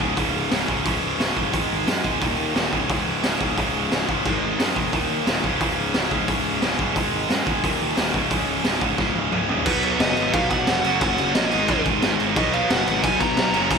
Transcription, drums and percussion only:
0.00 kick
0.17 kick, open hi-hat
0.51 snare, open hi-hat
0.68 kick
0.86 kick, open hi-hat
1.20 snare, open hi-hat
1.37 kick
1.54 kick, open hi-hat
1.88 snare, open hi-hat
2.04 kick
2.22 kick, open hi-hat
2.56 snare, open hi-hat
2.73 kick
2.90 kick, open hi-hat
3.24 snare, open hi-hat
3.41 kick
3.57 kick, open hi-hat
3.92 snare, open hi-hat
4.09 kick
4.25 kick, crash
4.60 snare, open hi-hat
4.76 kick
4.93 kick, open hi-hat
5.27 snare, open hi-hat
5.44 kick
5.60 kick, open hi-hat
5.94 snare, open hi-hat
6.11 kick
6.28 kick, open hi-hat
6.62 snare, open hi-hat
6.79 kick
6.96 kick, open hi-hat
7.30 snare, open hi-hat
7.47 kick
7.64 kick, open hi-hat
7.97 snare, open hi-hat
8.14 kick
8.31 kick, open hi-hat
8.64 snare, open hi-hat
8.81 kick
8.98 kick, snare
9.15 high tom
9.32 mid tom
9.49 floor tom
9.66 kick, crash
9.83 crash
10.00 snare, crash
10.17 crash
10.33 kick, crash
10.50 kick, crash
10.67 snare, crash
10.84 crash
11.01 kick, crash
11.18 crash
11.35 snare, crash
11.52 crash
11.68 kick, crash
11.86 kick, crash
12.02 snare, crash
12.20 crash
12.36 kick, crash
12.53 crash
12.70 snare, crash
12.87 crash
13.03 kick, crash
13.21 kick, crash
13.37 snare, crash
13.54 crash
13.71 kick, crash

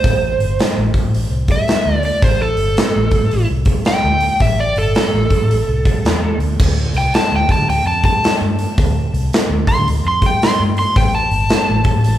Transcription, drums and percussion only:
0.04 kick, open hi-hat
0.40 open hi-hat
0.59 snare, open hi-hat
0.94 kick, open hi-hat
1.14 open hi-hat
1.48 kick, open hi-hat
1.68 snare, open hi-hat
2.03 open hi-hat
2.22 kick, open hi-hat
2.57 open hi-hat
2.77 snare, open hi-hat
3.11 kick, open hi-hat
3.31 open hi-hat
3.65 kick, open hi-hat
3.85 snare, open hi-hat
4.20 open hi-hat
4.40 kick, open hi-hat
4.76 open hi-hat
4.95 snare, open hi-hat
5.30 kick, open hi-hat
5.51 open hi-hat
5.85 kick, open hi-hat
6.05 snare, open hi-hat
6.40 open hi-hat
6.59 kick, crash
6.94 open hi-hat
7.14 snare, open hi-hat
7.49 kick, open hi-hat
7.70 open hi-hat
8.03 kick, open hi-hat
8.24 snare, open hi-hat
8.59 open hi-hat
8.78 kick, open hi-hat
9.14 open hi-hat
9.33 snare, open hi-hat
9.67 kick, open hi-hat
9.88 open hi-hat
10.22 kick, open hi-hat
10.42 snare, open hi-hat
10.77 open hi-hat
10.96 kick, open hi-hat
11.31 open hi-hat
11.49 snare, open hi-hat
11.84 kick, open hi-hat
12.04 open hi-hat

